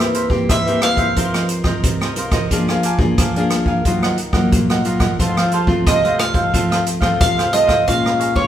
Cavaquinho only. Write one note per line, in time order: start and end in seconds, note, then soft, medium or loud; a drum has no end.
0.00 0.13 A#4 medium
0.00 0.14 C5 medium
0.00 0.14 E5 medium
0.14 0.28 E4 medium
0.14 0.29 A#4 medium
0.14 0.29 C5 medium
0.14 0.29 E5 medium
0.29 muted cavaquinho stroke soft
0.49 0.65 E4 soft
0.49 0.65 A#4 medium
0.49 0.65 C5 medium
0.49 0.66 E5 medium
0.67 0.98 A#4 medium
0.67 0.97 C5 medium
0.67 0.96 E5 medium
0.97 1.15 A#4 medium
0.97 1.15 C5 medium
0.97 1.14 E5 medium
1.17 1.33 F4 soft
1.17 1.33 A#4 medium
1.17 1.33 C5 medium
1.17 1.33 D#5 soft
1.35 1.50 A#4 soft
1.35 1.50 C5 medium
1.35 1.50 D#5 medium
1.50 muted cavaquinho stroke soft
1.66 2.00 A#4 medium
1.66 1.99 C5 medium
1.66 1.99 D#5 medium
2.03 2.17 A#4 medium
2.03 2.17 C5 medium
2.03 2.17 D#5 medium
2.18 2.33 F4 soft
2.18 2.33 A#4 soft
2.18 2.33 C5 medium
2.18 2.32 D#5 soft
2.33 2.50 A#4 medium
2.33 2.50 C5 medium
2.33 2.49 D#5 medium
2.52 2.67 D4 medium
2.52 2.67 A#4 soft
2.52 2.68 F5 medium
2.52 2.68 G#5 medium
2.69 2.83 A#4 medium
2.69 2.84 F5 medium
2.69 2.84 G#5 medium
2.84 2.98 D4 medium
2.84 2.99 A#4 medium
2.84 2.99 F5 medium
2.84 2.99 G#5 medium
3.00 muted cavaquinho stroke soft
3.19 3.34 D4 medium
3.19 3.35 A#4 medium
3.19 3.35 F5 medium
3.19 3.35 G#5 medium
3.36 3.67 A#4 soft
3.36 3.66 F5 medium
3.36 3.65 G#5 medium
3.66 3.84 A#4 medium
3.66 3.84 F5 medium
3.66 3.83 G#5 medium
3.85 4.01 F4 medium
3.85 4.01 A#4 medium
3.85 4.02 D#5 medium
3.85 4.02 F#5 medium
4.04 4.17 A#4 soft
4.04 4.18 D#5 medium
4.04 4.18 F#5 medium
4.18 muted cavaquinho stroke soft
4.34 4.68 A#4 medium
4.34 4.67 D#5 medium
4.34 4.67 F#5 medium
4.71 4.84 A#4 medium
4.71 4.85 D#5 medium
4.71 4.85 F#5 medium
4.85 5.01 F4 soft
4.85 5.00 A#4 medium
4.85 4.99 D#5 medium
4.85 4.98 F#5 medium
5.00 5.17 A#4 medium
5.00 5.17 D#5 medium
5.00 5.17 F#5 medium
5.20 5.35 F4 soft
5.20 5.36 A4 soft
5.20 5.36 C5 soft
5.20 5.36 F5 medium
5.38 5.52 A4 medium
5.38 5.53 C5 medium
5.38 5.53 F5 medium
5.53 5.67 F4 medium
5.53 5.68 A4 medium
5.53 5.68 C5 medium
5.53 5.68 F5 medium
5.68 muted cavaquinho stroke soft
5.87 6.02 F4 soft
5.87 6.03 A4 medium
5.87 6.03 C5 medium
5.87 6.03 F5 medium
6.05 6.34 A4 soft
6.05 6.33 C5 medium
6.05 6.32 F5 medium
6.34 6.52 A4 medium
6.34 6.51 C5 medium
6.34 6.51 F5 medium
6.53 6.69 F4 soft
6.53 6.69 A4 medium
6.53 6.70 C5 medium
6.53 6.70 F5 medium
6.71 6.85 A4 medium
6.71 6.85 C5 medium
6.71 6.85 F5 medium
6.86 muted cavaquinho stroke soft
7.00 7.35 A4 medium
7.00 7.35 C5 medium
7.00 7.34 F5 medium
7.38 7.52 A4 medium
7.38 7.53 C5 medium
7.38 7.53 F5 medium
7.53 7.69 F4 soft
7.53 7.67 A4 medium
7.53 7.67 C5 medium
7.53 7.66 F5 medium
7.67 7.85 A4 medium
7.67 7.85 C5 medium
7.67 7.84 F5 medium
7.87 8.03 G#4 soft
7.87 8.03 C#5 soft
7.87 8.03 F5 soft
7.87 8.03 A#5 medium
8.05 8.18 C#5 medium
8.05 8.19 F5 medium
8.05 8.20 A#5 medium
8.19 8.34 G#4 medium
8.19 8.33 C#5 medium
8.19 8.34 F5 medium
8.19 8.34 A#5 medium
8.35 muted cavaquinho stroke soft